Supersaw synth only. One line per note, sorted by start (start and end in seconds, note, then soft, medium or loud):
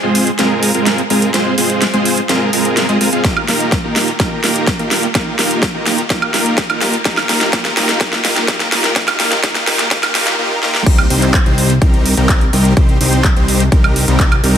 0.03 0.30 G#3 medium
0.03 0.30 C4 medium
0.03 0.30 F4 medium
0.03 0.30 G#4 medium
0.03 0.30 C5 loud
0.39 0.72 G#3 medium
0.39 0.72 C4 medium
0.39 0.72 F4 medium
0.39 0.72 G#4 medium
0.39 0.72 A#4 loud
0.74 1.01 G#3 medium
0.74 1.01 C4 medium
0.74 1.01 F4 medium
0.74 1.01 G#4 medium
0.74 1.01 A#4 medium
1.10 1.30 G#3 medium
1.10 1.30 C4 medium
1.10 1.30 F4 medium
1.10 1.30 G#4 medium
1.10 1.30 A#4 loud
1.34 1.55 G#3 medium
1.34 1.55 C4 medium
1.34 1.55 F4 medium
1.34 1.55 G#4 medium
1.34 1.55 C5 medium
1.58 1.85 G#3 medium
1.58 1.85 C4 medium
1.58 1.85 F4 medium
1.58 1.85 G#4 medium
1.58 1.85 C5 medium
1.94 2.20 G#3 medium
1.94 2.20 C4 medium
1.94 2.20 F4 medium
1.94 2.20 G#4 medium
1.94 2.20 C5 loud
2.29 2.51 G#3 medium
2.29 2.51 C4 medium
2.29 2.51 F4 medium
2.29 2.51 G#4 medium
2.29 2.51 A#4 loud
2.53 2.86 G#3 medium
2.53 2.86 C4 medium
2.53 2.86 F4 medium
2.53 2.86 G#4 medium
2.53 2.86 A#4 medium
2.89 2.98 G#3 medium
2.89 2.98 C4 medium
2.89 2.98 F4 medium
2.89 2.98 G#4 medium
2.89 2.98 D#5 loud
3.01 3.10 G#3 medium
3.01 3.10 C4 medium
3.01 3.10 F4 medium
3.01 3.10 G#4 medium
3.01 3.10 A#4 medium
3.13 3.23 G#3 medium
3.13 3.23 C4 medium
3.13 3.23 F4 medium
3.13 3.23 G#4 medium
3.13 3.23 F5 loud
3.24 3.45 A#3 medium
3.24 3.45 F4 medium
3.24 3.45 G4 medium
3.48 3.75 A#3 medium
3.48 3.75 D#4 medium
3.48 3.75 F4 medium
3.48 3.75 G4 medium
3.48 3.75 A#4 medium
3.84 4.11 A#3 medium
3.84 4.11 D#4 medium
3.84 4.11 F4 medium
3.84 4.11 G4 medium
3.84 4.11 A#4 medium
4.20 4.41 A#3 medium
4.20 4.41 D#4 medium
4.20 4.41 F4 medium
4.20 4.41 G4 medium
4.20 4.41 A#4 medium
4.44 4.70 A#3 medium
4.44 4.70 D#4 medium
4.44 4.70 F4 medium
4.44 4.70 G4 medium
4.44 4.70 A#4 medium
4.79 5.06 A#3 medium
4.79 5.06 D#4 medium
4.79 5.06 F4 medium
4.79 5.06 G4 medium
4.79 5.06 A#4 medium
5.15 5.36 A#3 medium
5.15 5.36 D#4 medium
5.15 5.36 F4 medium
5.15 5.36 G4 medium
5.15 5.36 A#4 medium
5.39 5.66 A#3 medium
5.39 5.66 D#4 medium
5.39 5.66 F4 medium
5.39 5.66 G4 medium
5.39 5.66 A#4 medium
5.74 6.01 A#3 medium
5.74 6.01 D#4 medium
5.74 6.01 F4 medium
5.74 6.01 G4 medium
5.74 6.01 A#4 medium
6.10 6.31 A#3 medium
6.10 6.31 D#4 medium
6.10 6.31 F4 medium
6.10 6.31 G4 medium
6.10 6.31 A#4 medium
6.34 6.61 A#3 medium
6.34 6.61 D#4 medium
6.34 6.61 F4 medium
6.34 6.61 G4 medium
6.34 6.61 A#4 loud
6.70 6.97 A#3 medium
6.70 6.97 D#4 medium
6.70 6.97 F4 medium
6.70 6.97 G4 medium
6.70 6.97 A#4 loud
7.05 7.26 A#3 medium
7.05 7.26 D#4 medium
7.05 7.26 F4 medium
7.05 7.26 G4 medium
7.05 7.26 A#4 medium
7.29 7.51 A#3 medium
7.29 7.51 D#4 medium
7.29 7.51 F4 medium
7.29 7.51 G4 medium
7.29 7.51 A#4 loud
7.53 7.74 A#3 medium
7.53 7.74 F4 medium
7.77 7.99 A#3 medium
7.77 7.99 D#4 medium
7.77 7.99 F4 medium
7.77 7.99 G4 medium
7.77 7.99 A#4 loud
8.01 8.22 A#3 medium
8.01 8.22 D#4 medium
8.01 8.22 F4 medium
8.01 8.22 G4 medium
8.01 8.22 A#4 medium
8.24 8.46 A#3 medium
8.24 8.46 D#4 medium
8.24 8.46 F4 medium
8.24 8.46 G4 medium
8.24 8.46 A#4 loud
8.48 8.69 A#3 medium
8.48 8.69 D#4 medium
8.48 8.69 F4 medium
8.48 8.69 G4 medium
8.48 8.69 A#4 medium
8.72 8.94 A#3 medium
8.72 8.94 D#4 medium
8.72 8.94 F4 medium
8.72 8.94 G4 medium
8.72 8.94 A#4 loud
8.96 9.17 A#3 medium
8.96 9.17 D#4 medium
9.20 9.41 A#3 medium
9.20 9.41 D#4 medium
9.20 9.41 F4 medium
9.20 9.41 G4 medium
9.20 9.41 A#4 medium
9.43 9.64 A#3 medium
9.43 9.64 D#4 medium
9.43 9.64 F4 medium
9.43 9.64 G4 medium
9.67 9.88 A#3 medium
9.67 9.88 D#4 medium
9.67 9.88 F4 medium
9.67 9.88 G4 medium
9.67 9.88 A#4 medium
9.91 10.12 D#4 medium
9.91 10.12 F4 medium
9.91 10.12 G4 medium
10.15 10.36 A#3 medium
10.15 10.36 D#4 medium
10.15 10.36 F4 medium
10.15 10.36 G4 medium
10.15 10.36 A#4 medium
10.39 10.60 A#3 medium
10.39 10.60 D#4 medium
10.39 10.60 F4 medium
10.39 10.60 G4 medium
10.39 10.60 A#4 medium
10.62 10.83 A#3 medium
10.62 10.84 D#4 medium
10.62 10.83 F4 medium
10.62 10.83 G4 medium
10.62 10.83 A#4 medium
10.86 11.07 G3 medium
10.86 11.07 C4 medium
10.86 11.07 D#4 medium
10.86 11.07 G4 medium
11.10 11.37 G3 medium
11.10 11.37 C4 medium
11.10 11.37 D#4 medium
11.10 11.37 G4 medium
11.10 11.37 C5 loud
11.46 11.73 G3 medium
11.46 11.73 C4 medium
11.46 11.73 D#4 medium
11.46 11.73 G4 medium
11.46 11.73 C5 loud
11.82 12.14 G3 loud
11.82 12.14 C4 medium
11.82 12.14 D#4 medium
11.82 12.14 G4 medium
11.82 12.14 A#4 loud
12.17 12.44 G3 medium
12.17 12.44 C4 medium
12.17 12.44 D#4 medium
12.17 12.44 G4 medium
12.17 12.44 A#4 medium
12.53 12.73 G3 medium
12.53 12.73 C4 medium
12.53 12.73 D#4 medium
12.53 12.73 G4 medium
12.53 12.73 A#4 loud
13.01 13.28 G3 medium
13.01 13.28 C4 medium
13.01 13.28 D#4 medium
13.01 13.28 G4 medium
13.01 13.28 C5 loud
13.36 13.63 G3 medium
13.36 13.63 C4 medium
13.36 13.63 D#4 medium
13.36 13.63 G4 medium
13.36 13.63 C5 medium
13.72 14.05 G3 loud
13.72 14.05 C4 medium
13.72 14.05 D#4 medium
13.72 14.05 G4 medium
13.72 14.05 A#4 loud
14.08 14.35 G3 medium
14.08 14.35 C4 medium
14.08 14.35 D#4 medium
14.08 14.35 G4 medium
14.08 14.35 A#4 medium
14.43 14.58 G3 loud
14.43 14.58 C4 medium
14.43 14.58 D#4 medium
14.43 14.58 G4 medium
14.43 14.58 A#4 loud